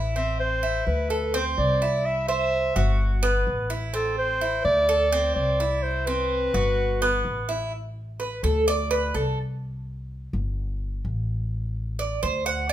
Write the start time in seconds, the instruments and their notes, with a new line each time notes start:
Already playing: upright bass A1, cuban tres E4
0.16 cuban tres C4, clarinet E5
0.40 clarinet C5
0.63 cuban tres E4
0.87 upright bass D2, clarinet B4
1.10 cuban tres A4
1.34 cuban tres C4, clarinet C5
1.58 upright bass C2, clarinet D5
1.82 cuban tres E4
2.06 clarinet E5
2.28 cuban tres C5, clarinet E5
2.76 upright bass G1, cuban tres F#4
3.23 cuban tres B3
3.47 upright bass A1
3.70 cuban tres E4
3.94 cuban tres C4, clarinet A4
4.18 clarinet C5
4.41 cuban tres E4
4.65 upright bass D2, clarinet D5
4.89 cuban tres A4
5.12 cuban tres C4
5.35 upright bass C2, clarinet D5
5.60 cuban tres E4
5.83 clarinet C5
6.06 cuban tres C4, clarinet B4
6.54 upright bass G1, cuban tres F#4
7.02 cuban tres B3
7.25 upright bass A1
7.49 cuban tres E4
8.20 cuban tres B4
8.43 upright bass D2, cuban tres A4
8.68 cuban tres D5
8.91 cuban tres B4
9.14 upright bass C2, cuban tres A4
10.33 upright bass G1
11.05 upright bass A1
11.99 cuban tres D5
12.23 upright bass D2, cuban tres C5
12.46 cuban tres F#5
12.69 cuban tres D5